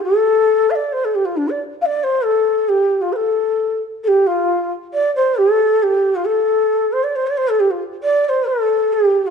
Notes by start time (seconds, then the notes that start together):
0.02 A4
0.70 F5
0.75 D5
0.92 C5
1.04 A4
1.15 G4
1.25 F4
1.36 D4
1.49 D5
1.81 F5
1.85 D5
2.03 C5
2.24 A4
2.68 G4
3.01 F4
3.12 A4 C5
4.03 G4 A4
4.26 F4
4.93 D5
5.15 C5
5.38 A4
5.83 G4
6.15 F4
6.26 A4
6.92 C5
7.03 D5
7.15 C5
7.26 D5
7.37 C5
7.48 A4
7.59 G4
7.70 F4
8.03 D5
8.24 D5
8.29 C5
8.47 A4
8.93 G4
9.26 F4